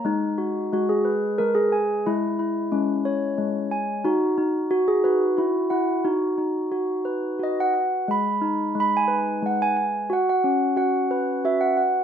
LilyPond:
\new Staff \with { instrumentName = "Handbells" } { \time 3/4 \key b \major \tempo 4 = 90 << { dis'4 fis'16 gis'8. ais'16 gis'8. | e'4 cis'4. r8 | dis'4 fis'16 gis'16 fis'8 e'8 e'8 | dis'2 dis''16 fis''8. |
b''4 b''16 gis''8. fis''16 gis''8. | fis''16 fis''8. fis''4 e''16 fis''8. | } \\ { gis8 fis'8 gis8 b'8 gis8 gis''8 | gis8 e'8 gis8 cis''8 gis8 gis''8 | fis'8 dis'4 b'8 fis'8 fis''8 | fis'8 dis'8 fis'8 b'8 fis'8 fis''8 |
gis8 dis'8 gis8 b'8 gis8 gis''8 | fis'8 cis'8 fis'8 b'8 fis'8 fis''8 | } >> }